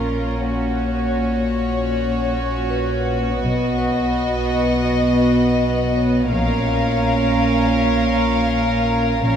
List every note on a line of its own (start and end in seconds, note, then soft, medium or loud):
0.00 3.36 A#1 medium
0.00 3.37 A#2 soft
0.00 3.37 C#4 soft
0.00 0.45 F4 soft
0.00 0.44 A#4 soft
0.48 6.32 F#4 soft
0.48 3.40 C#5 soft
2.70 3.77 B4 soft
3.40 6.32 B1 medium
3.40 4.09 B1 soft
3.40 6.32 B2 soft
3.40 6.28 B3 soft
3.40 6.32 D#5 soft
3.78 5.92 B4 soft
5.96 8.11 C#5 soft
6.32 9.23 A#1 medium
6.32 7.01 A#1 soft
6.32 9.21 A#2 soft
6.32 9.24 C#4 soft
6.32 9.21 A#4 soft
6.32 9.21 F5 soft
9.24 9.36 A#1 soft
9.24 9.36 A#1 medium
9.24 9.36 A#2 medium
9.24 9.36 C#4 soft
9.24 9.36 A#4 soft
9.24 9.36 F5 soft